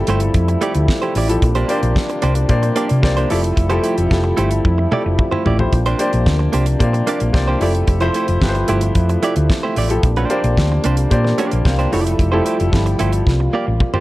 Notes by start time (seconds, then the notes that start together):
Already playing: C3 F3 G3 A3 E4 G4 A4
0.07 G1 A3 E4 G4 C5, closed hi-hat
0.20 muted clean electric guitar stroke, closed hi-hat
0.34 F2, kick, closed hi-hat
0.48 muted clean electric guitar stroke, closed hi-hat
0.61 A3 E4 G4 D5, closed hi-hat
0.75 D2, muted clean electric guitar stroke, closed hi-hat
0.88 muted clean electric guitar stroke, kick, snare
1.02 A3 E4 G4 C5, closed hi-hat
1.15 A1 A3 E4 G4 D5, open hi-hat
1.28 F3 E4 G4 A4, muted clean electric guitar stroke, closed hi-hat
1.42 A#1 C3 A#3 D4, muted clean electric guitar stroke, kick, closed hi-hat
1.55 A#3 D4 G4 C5, closed hi-hat
1.68 A#3 D4 G4 C5 D5, closed hi-hat
1.83 A#1, muted clean electric guitar stroke, closed hi-hat
1.96 kick, snare
2.10 muted clean electric guitar stroke, closed hi-hat
2.22 C2 A#3 D4 G4 C5, closed hi-hat
2.35 muted clean electric guitar stroke, closed hi-hat
2.49 A#2 A#3 G4 C5 D5, kick, closed hi-hat
2.63 muted clean electric guitar stroke, closed hi-hat
2.76 A#3 D4 G4 D5, closed hi-hat
2.89 C3, muted clean electric guitar stroke, closed hi-hat
3.02 C2 A#3 G4 C5 D5, muted clean electric guitar stroke, kick, snare
3.17 A#3 D4 G4 C5, closed hi-hat
3.29 F1 F3 A3 E4 G4 A4 D5, open hi-hat
3.43 muted clean electric guitar stroke, closed hi-hat
3.56 F1, muted clean electric guitar stroke, kick, closed hi-hat
3.69 F3 A3 E4 G4 A4 C5, closed hi-hat
3.83 A3 E4 G4 C5, closed hi-hat
3.97 F1, muted clean electric guitar stroke, closed hi-hat
4.10 F1 F3 E4 G4 A4, kick, snare
4.24 muted clean electric guitar stroke
4.37 G1 A3 E4 G4 C5, closed hi-hat
4.51 muted clean electric guitar stroke, closed hi-hat
4.65 F2, kick, high tom
4.78 muted clean electric guitar stroke
4.92 A3 E4 G4 D5, mid tom
5.05 F1, muted clean electric guitar stroke
5.18 muted clean electric guitar stroke, kick, mid tom
5.31 A3 E4 G4 C5, mid tom
5.45 A1 A3 E4 G4 D5, floor tom
5.58 F3 E4 G4 C5, muted clean electric guitar stroke, floor tom
5.72 A#1 A#3 D4, muted clean electric guitar stroke, kick, closed hi-hat
5.86 A#3 D4 G4 C5, closed hi-hat
5.98 A#3 D4 G4 C5 D5, closed hi-hat
6.13 A#1, muted clean electric guitar stroke, closed hi-hat
6.26 D2, kick, snare
6.39 muted clean electric guitar stroke
6.53 C2 A#3 D4 G4 C5, closed hi-hat
6.66 closed hi-hat
6.79 A#2 A#3 G4 C5 D5, kick, closed hi-hat
6.93 muted clean electric guitar stroke, closed hi-hat
7.07 A#3 D4 G4 D5, closed hi-hat
7.20 A#1, muted clean electric guitar stroke, closed hi-hat
7.33 C2 A#3 G4 C5 D5, muted clean electric guitar stroke, kick, snare
7.48 A#3 D4 G4 C5
7.60 F1 F3 A3 E4 G4 A4 D5, open hi-hat
7.74 muted clean electric guitar stroke, closed hi-hat
7.87 F1, muted clean electric guitar stroke, kick, closed hi-hat
8.00 F3 A3 E4 G4 C5, closed hi-hat
8.14 A3 E4 G4 C5, closed hi-hat
8.28 F1, muted clean electric guitar stroke, closed hi-hat
8.41 G1 F3 E4 G4 B4, kick, snare
8.49 C5
8.55 muted clean electric guitar stroke, closed hi-hat
8.68 G1 A3 E4 G4 C5, closed hi-hat
8.81 muted clean electric guitar stroke, closed hi-hat
8.95 F2, kick, closed hi-hat
9.09 muted clean electric guitar stroke, closed hi-hat
9.23 A3 E4 G4 D5, closed hi-hat
9.36 D2, closed hi-hat
9.50 muted clean electric guitar stroke, kick, snare
9.63 A3 E4 G4 C5
9.76 A1 A3 E4 G4 D5, open hi-hat
9.89 F3 E4 G4 A4, muted clean electric guitar stroke, closed hi-hat
10.03 A#1 G3 A#3 D4, muted clean electric guitar stroke, kick, closed hi-hat
10.16 A#3 D4 G4 C5, closed hi-hat
10.29 A#3 D4 G4 C5 D5, closed hi-hat
10.44 A#1, muted clean electric guitar stroke, closed hi-hat
10.57 D2, kick, snare
10.72 muted clean electric guitar stroke
10.84 C2 A#3 D4 G4 C5, closed hi-hat
10.97 muted clean electric guitar stroke, closed hi-hat
11.10 A#2 A#3 G4 C5 D5, kick, closed hi-hat
11.25 muted clean electric guitar stroke, snare
11.38 A#3 D4 G4 D5, closed hi-hat
11.51 A#1, muted clean electric guitar stroke, closed hi-hat
11.65 C2 A#3 G4 C5 F5, muted clean electric guitar stroke, kick, snare
11.79 A#3 D4 G4 C5, closed hi-hat
11.91 F1 F3 A3 E4 G4 A4 D5, open hi-hat
12.05 muted clean electric guitar stroke, closed hi-hat
12.19 F1, muted clean electric guitar stroke, kick, closed hi-hat
12.32 F3 A3 E4 G4 A4 C5
12.45 A3 E4 G4 C5, closed hi-hat
12.60 F1, closed hi-hat
12.72 G1 F3 E4 G4 A4, kick, snare
12.86 muted clean electric guitar stroke, closed hi-hat
12.99 G1 A3 E4 G4 C5, closed hi-hat
13.13 muted clean electric guitar stroke, closed hi-hat
13.26 C2 A#3 F4, kick, snare
13.40 muted clean electric guitar stroke
13.53 A#3 F4 G4 D5
13.67 A1, muted clean electric guitar stroke
13.80 muted clean electric guitar stroke, kick, mid tom
13.94 A#3 F4 G4 C5, mid tom